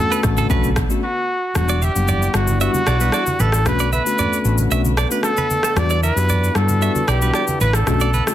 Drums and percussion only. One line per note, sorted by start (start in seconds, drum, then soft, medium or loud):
0.12 shaker medium
0.23 kick loud
0.23 cross-stick medium
0.23 shaker medium
0.37 high conga medium
0.37 shaker medium
0.50 kick loud
0.50 low conga medium
0.50 shaker medium
0.64 high conga medium
0.64 shaker medium
0.76 kick loud
0.76 cross-stick loud
0.76 shaker medium
0.90 shaker medium
1.55 cross-stick medium
1.55 low conga medium
1.55 shaker medium
1.69 shaker medium
1.82 high conga medium
1.82 shaker soft
1.96 shaker medium
2.08 low conga medium
2.08 shaker medium
2.22 shaker medium
2.34 cross-stick loud
2.34 shaker medium
2.47 high conga medium
2.47 shaker loud
2.61 shaker medium
2.74 high conga medium
2.74 shaker soft
2.87 cross-stick loud
2.87 shaker medium
3.00 shaker medium
3.12 cross-stick medium
3.12 shaker medium
3.26 high conga medium
3.26 shaker medium
3.40 high conga medium
3.40 shaker medium
3.52 cross-stick medium
3.52 shaker loud
3.66 cross-stick loud
3.66 low conga medium
3.66 shaker medium
3.79 shaker medium
3.93 high conga medium
3.93 shaker soft
4.07 shaker medium
4.18 low conga medium
4.18 shaker medium
4.33 shaker medium
4.45 shaker medium
4.58 high conga medium
4.58 shaker loud
4.71 shaker medium
4.85 high conga medium
4.85 shaker medium
4.97 cross-stick loud
4.97 shaker medium
5.11 shaker medium
5.23 cross-stick medium
5.23 shaker medium
5.37 high conga medium
5.37 shaker medium
5.50 high conga medium
5.50 shaker medium
5.63 cross-stick medium
5.63 shaker medium
5.77 cross-stick loud
5.77 low conga medium
5.77 shaker medium
5.90 shaker medium
6.03 high conga medium
6.03 shaker soft
6.17 shaker medium
6.29 low conga medium
6.29 shaker medium
6.44 shaker medium
6.55 cross-stick medium
6.55 shaker medium
6.69 high conga medium
6.69 shaker loud
6.82 shaker medium
6.95 high conga medium
6.95 shaker soft
7.08 cross-stick loud
7.08 shaker medium
7.22 shaker medium
7.34 cross-stick medium
7.34 shaker medium
7.47 high conga medium
7.47 shaker medium
7.61 high conga medium
7.61 shaker medium
7.73 cross-stick medium
7.73 shaker medium
7.87 cross-stick medium
7.87 low conga medium
7.87 shaker medium
8.00 shaker medium
8.14 high conga medium
8.14 shaker soft
8.27 cross-stick medium
8.27 shaker loud